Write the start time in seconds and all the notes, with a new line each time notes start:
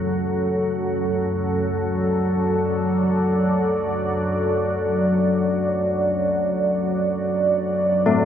Already playing: F#2 C#3 F#3 A4 F#5
1.66 D5
6.87 B4
8.06 A3